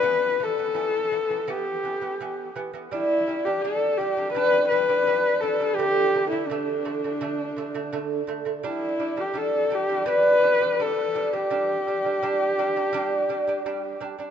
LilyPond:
<<
  \new Staff \with { instrumentName = "Horsehead fiddle" } { \time 4/4 \tempo 4 = 84 b'8 a'4. g'4. r8 | e'8. g'16 a'8 g'8 b'8 b'4 a'8 | g'8. e'16 d'2~ d'8 r8 | e'8. g'16 a'8 g'8 b'4 a'8. g'16~ |
g'2.~ g'8 r8 | }
  \new Staff \with { instrumentName = "Lute" } { \clef bass \time 4/4 <e b>8 <e b>16 <e b>16 <e b>8 <e b>16 <e b>16 <e b>8 <e b>16 <e b>16 <e b>8 <e b>16 <e b>16 | <g d'>8 <g d'>16 <g d'>16 <g d'>8 <g d'>16 <g d'>16 <g d'>8 <g d'>16 <g d'>16 <g d'>8 <g d'>16 <g d'>16 | <d a>8 <d a>16 <d a>16 <d a>8 <d a>16 <d a>16 <d a>8 <d a>16 <d a>16 <d a>8 <d a>16 <d a>16 | <g d'>8 <g d'>16 <g d'>16 <g d'>8 <g d'>16 <g d'>16 <g d'>8 <g d'>16 <g d'>16 <g d'>8 <g d'>16 <g d'>16 |
<g d'>8 <g d'>16 <g d'>16 <g d'>8 <g d'>16 <g d'>16 <g d'>8 <g d'>16 <g d'>16 <g d'>8 <g d'>16 <g d'>16 | }
>>